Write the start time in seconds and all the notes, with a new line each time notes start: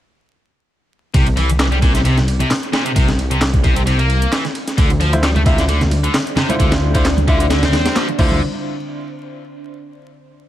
1.14 C2 C3, kick, closed hi-hat, ride
1.26 closed hi-hat, ride
1.37 E3, ride
1.50 closed hi-hat
1.59 E3, snare, clap, closed hi-hat, ride
1.72 G3, closed hi-hat
1.82 A#2, kick, ride
1.95 C3, snare, closed hi-hat
2.05 C3, closed hi-hat, ride
2.18 snare, closed hi-hat
2.28 ride
2.40 C3, closed hi-hat
2.51 snare, clap, closed hi-hat, open hi-hat
2.63 closed hi-hat
2.73 A#2, snare, ride
2.85 C3, closed hi-hat
2.96 C2 C3, kick, closed hi-hat, ride
3.08 snare, closed hi-hat
3.19 ride
3.31 C3, closed hi-hat
3.41 snare, clap, closed hi-hat, ride
3.54 kick, closed hi-hat
3.64 C3, kick, ride
3.76 C3, closed hi-hat, ride
3.87 C3, closed hi-hat, ride
3.99 A#3, closed hi-hat, ride
4.10 ride
4.22 closed hi-hat
4.32 E3, snare, clap, closed hi-hat, ride
4.45 snare, closed hi-hat
4.55 ride
4.67 snare, closed hi-hat
4.78 D2 D3 D4 C5 D5, kick, closed hi-hat, ride
4.89 closed hi-hat, ride, high bongo
5.00 F3, ride
5.13 E4 F4 C5, closed hi-hat
5.23 G3, snare, clap, closed hi-hat, ride
5.36 A3, closed hi-hat, high conga, low conga
5.46 C3 E4 F4 E5, kick, ride
5.58 D3, snare, closed hi-hat, high bongo
5.69 D3, closed hi-hat, ride
5.81 snare, closed hi-hat, low conga
5.91 ride, high bongo, high conga
6.04 D3, closed hi-hat
6.14 snare, clap, closed hi-hat, open hi-hat
6.27 closed hi-hat
6.36 C3, snare, ride, low conga
6.49 D3 E4 F4 C5, closed hi-hat, high conga
6.59 D2 D3, kick, closed hi-hat, ride
6.71 snare, closed hi-hat, ride, high bongo
6.95 D3 E4 F4 C5, kick, closed hi-hat, ride
7.05 snare, clap, closed hi-hat, ride
7.17 closed hi-hat, high conga, low conga
7.28 D3 E4 F4 E5, kick, ride
7.40 D3, closed hi-hat, ride, high bongo
7.50 D3, snare, closed hi-hat, ride
7.63 C4, snare, closed hi-hat, ride, low conga
7.72 E2, snare, ride, high bongo, high conga
7.86 snare, closed hi-hat, ride
7.96 F3, snare, clap, closed hi-hat, ride
8.08 closed hi-hat
8.18 D2 D3 E4 F4 C5, kick, crash, low conga
8.31 high conga